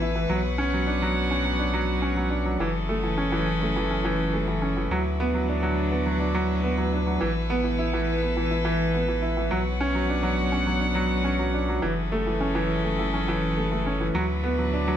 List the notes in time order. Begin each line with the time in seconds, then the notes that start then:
Already playing: A1 E3 B3 E4 A4 B4
0.02 E4
0.15 E3
0.29 B1 F#3 B3 C#5 F#5
0.58 C#4
0.73 F#3
0.87 D4
1.02 F#3
1.31 C#4
1.45 F#3
1.59 D4
1.73 F#3
2.02 C#4
2.16 F#3
2.30 D4
2.45 F#3
2.59 F#1 E3 F#3 C#4 E4 G#4 A4
2.89 A3
3.04 E3
3.18 C#4
3.32 E3
3.62 A3
3.76 E3
3.91 C#4
4.05 E3
4.34 A3
4.48 E3
4.62 C#4
4.77 E3
4.90 D2 D3 F#3 D4 F#4 B4
5.20 B3
5.34 F#3
5.49 D4
5.63 F#3
5.92 B3
6.06 F#3
6.20 D4
6.35 F#3
6.64 B3
6.78 F#3
6.92 D4
7.07 F#3
7.21 A1 E3 A4
7.50 B3
7.64 E3
7.79 E4
7.93 E3
8.22 B3
8.37 E3
8.51 E4
8.65 E3
8.94 B3
9.08 E3
9.22 E4
9.37 E3
9.51 B1 F#3 B3 C#5 F#5
9.81 C#4
9.95 F#3
10.10 D4
10.23 F#3
10.52 C#4
10.67 F#3
10.81 D4
10.95 F#3
11.24 C#4
11.39 F#3
11.54 D4
11.69 F#3
11.82 F#1 E3 F#3 C#4 E4 G#4 A4
12.12 A3
12.27 E3
12.41 C#4
12.55 E3
12.84 A3
12.99 E3
13.14 C#4
13.28 E3
13.57 A3
13.72 A3
13.86 C#4
14.01 E3
14.14 D2 D3 F#3 D4 E4 F#4 B4
14.44 B3
14.58 F#3
14.74 D4
14.88 F#3